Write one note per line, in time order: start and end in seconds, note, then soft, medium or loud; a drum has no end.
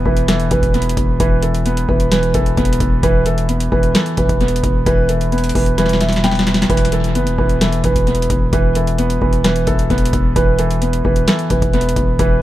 0.00 0.06 E3 medium
0.00 0.73 B3 medium
0.06 0.49 E1 medium
0.06 0.27 E3 medium
0.06 0.25 B4 medium
0.06 kick loud
0.17 closed hi-hat medium
0.28 0.50 E3 medium
0.28 0.48 A4 medium
0.28 snare loud
0.28 closed hi-hat medium
0.40 closed hi-hat medium
0.51 0.95 E1 loud
0.51 1.18 E3 medium
0.51 1.16 B4 medium
0.51 kick loud
0.51 closed hi-hat medium
0.63 kick medium
0.63 closed hi-hat medium
0.74 1.64 B3 medium
0.74 closed hi-hat soft
0.82 closed hi-hat medium
0.89 closed hi-hat medium
0.97 1.19 E1 loud
0.97 kick loud
0.97 closed hi-hat medium
1.20 1.86 E1 loud
1.20 1.41 E3 loud
1.20 1.40 B4 medium
1.20 kick loud
1.20 closed hi-hat medium
1.43 1.87 E3 medium
1.43 1.63 A4 medium
1.43 closed hi-hat medium
1.54 closed hi-hat medium
1.66 2.56 B3 medium
1.66 closed hi-hat medium
1.77 closed hi-hat medium
1.89 2.33 E1 loud
1.89 2.10 E3 medium
1.89 2.08 B4 medium
1.89 kick loud
2.00 closed hi-hat medium
2.12 2.33 E3 medium
2.12 2.31 B4 medium
2.12 snare loud
2.12 closed hi-hat medium
2.23 closed hi-hat medium
2.34 2.56 E1 loud
2.34 3.02 E3 medium
2.34 2.99 A4 medium
2.34 kick loud
2.34 closed hi-hat medium
2.46 closed hi-hat medium
2.57 2.79 E1 loud
2.57 3.03 B3 medium
2.57 kick medium
2.57 closed hi-hat medium
2.65 closed hi-hat medium
2.73 closed hi-hat medium
2.80 3.02 E1 loud
2.80 kick loud
2.80 closed hi-hat medium
3.03 3.69 E1 loud
3.03 3.25 E3 medium
3.03 3.23 B4 loud
3.03 kick loud
3.03 closed hi-hat medium
3.26 3.70 E3 medium
3.26 3.46 A4 medium
3.26 closed hi-hat medium
3.38 closed hi-hat medium
3.49 4.39 B3 medium
3.49 closed hi-hat medium
3.60 closed hi-hat medium
3.72 3.94 E1 loud
3.72 3.93 E3 medium
3.72 3.92 B4 medium
3.72 kick loud
3.83 closed hi-hat medium
3.95 4.16 E3 medium
3.95 4.15 A4 medium
3.95 snare loud
3.95 closed hi-hat medium
4.06 closed hi-hat medium
4.17 4.29 E1 loud
4.17 4.85 E3 medium
4.17 4.82 B4 medium
4.17 kick loud
4.17 closed hi-hat medium
4.29 4.62 E1 loud
4.29 kick medium
4.29 closed hi-hat medium
4.41 5.31 B3 medium
4.41 closed hi-hat medium
4.48 closed hi-hat medium
4.56 closed hi-hat medium
4.64 4.86 E1 loud
4.64 kick loud
4.64 closed hi-hat medium
4.86 5.52 E1 loud
4.86 5.08 E3 medium
4.86 5.06 B4 loud
4.86 kick loud
4.86 closed hi-hat medium
5.09 5.54 E3 medium
5.09 5.29 A4 medium
5.09 closed hi-hat medium
5.21 closed hi-hat medium
5.32 6.22 B3 medium
5.32 closed hi-hat soft
5.38 closed hi-hat medium
5.44 closed hi-hat medium
5.49 closed hi-hat medium
5.55 6.66 E1 loud
5.55 5.77 E3 medium
5.55 5.75 B4 medium
5.55 kick loud
5.55 open hi-hat medium
5.66 closed hi-hat medium
5.78 5.99 E3 loud
5.78 5.98 B4 medium
5.78 snare medium
5.78 closed hi-hat medium
5.86 snare medium
5.86 closed hi-hat medium
5.93 snare medium
6.01 6.68 E3 medium
6.01 6.21 E5 medium
6.01 snare medium
6.01 closed hi-hat medium
6.09 snare medium
6.09 closed hi-hat medium
6.16 snare medium
6.24 6.70 B3 medium
6.24 6.67 G5 medium
6.24 snare medium
6.24 closed hi-hat medium
6.31 snare medium
6.31 closed hi-hat soft
6.39 snare loud
6.47 snare medium
6.47 closed hi-hat soft
6.54 snare loud
6.54 closed hi-hat medium
6.62 snare medium
6.62 closed hi-hat medium
6.70 7.17 E1 loud
6.70 6.91 E3 medium
6.70 6.89 B4 loud
6.70 kick loud
6.70 closed hi-hat medium
6.77 closed hi-hat medium
6.85 closed hi-hat medium
6.92 7.37 E3 medium
6.92 7.12 A4 medium
6.92 closed hi-hat medium
7.04 closed hi-hat medium
7.15 7.28 F#1 loud
7.15 8.06 B3 medium
7.15 closed hi-hat medium
7.27 7.38 E1 loud
7.27 closed hi-hat medium
7.38 7.82 E1 loud
7.38 7.60 E3 medium
7.38 7.58 B4 medium
7.38 kick loud
7.49 closed hi-hat medium
7.61 7.83 E3 medium
7.61 7.81 A4 medium
7.61 snare loud
7.61 closed hi-hat medium
7.72 closed hi-hat medium
7.84 8.28 E1 loud
7.84 8.51 E3 medium
7.84 8.49 B4 medium
7.84 kick loud
7.84 closed hi-hat medium
7.96 kick medium
7.96 closed hi-hat medium
8.07 8.97 B3 medium
8.07 closed hi-hat soft
8.15 closed hi-hat medium
8.22 closed hi-hat medium
8.30 8.52 E1 loud
8.30 kick loud
8.30 closed hi-hat medium
8.53 9.19 E1 loud
8.53 8.74 E3 medium
8.53 8.72 B4 loud
8.53 kick loud
8.53 closed hi-hat medium
8.75 9.20 E3 medium
8.75 8.95 A4 medium
8.75 closed hi-hat medium
8.87 closed hi-hat medium
8.98 9.89 B3 medium
8.98 closed hi-hat medium
9.10 closed hi-hat medium
9.22 9.66 E1 loud
9.22 9.43 E3 medium
9.22 9.41 B4 medium
9.22 kick loud
9.33 closed hi-hat medium
9.44 9.66 E3 medium
9.44 9.64 B4 medium
9.44 snare loud
9.44 closed hi-hat medium
9.56 closed hi-hat medium
9.67 9.89 E1 loud
9.67 10.35 E3 medium
9.67 10.32 A4 loud
9.67 kick loud
9.67 closed hi-hat medium
9.79 closed hi-hat medium
9.90 10.12 E1 loud
9.90 10.36 B3 medium
9.90 kick medium
9.90 closed hi-hat medium
9.98 closed hi-hat medium
10.05 closed hi-hat medium
10.13 10.35 E1 loud
10.13 kick loud
10.13 closed hi-hat medium
10.36 11.02 E1 loud
10.36 10.57 E3 medium
10.36 10.56 B4 loud
10.36 kick loud
10.36 closed hi-hat medium
10.59 11.03 E3 medium
10.59 10.79 A4 medium
10.59 closed hi-hat medium
10.71 closed hi-hat medium
10.82 11.72 B3 medium
10.82 closed hi-hat medium
10.93 closed hi-hat medium
11.05 11.27 E1 loud
11.05 11.26 E3 medium
11.05 11.24 B4 medium
11.05 kick loud
11.16 closed hi-hat medium
11.28 11.49 E3 medium
11.28 11.47 A4 medium
11.28 snare loud
11.28 closed hi-hat medium
11.39 closed hi-hat medium
11.50 11.62 E1 loud
11.50 12.18 E3 medium
11.50 12.15 B4 medium
11.50 kick loud
11.50 closed hi-hat medium
11.62 11.95 E1 loud
11.62 kick loud
11.62 closed hi-hat medium
11.73 12.42 B3 medium
11.73 closed hi-hat soft
11.81 closed hi-hat medium
11.89 closed hi-hat medium
11.96 12.18 E1 loud
11.96 kick loud
11.96 closed hi-hat medium
12.19 12.42 E1 loud
12.19 12.41 E3 medium
12.19 12.39 B4 loud
12.19 kick loud
12.19 closed hi-hat medium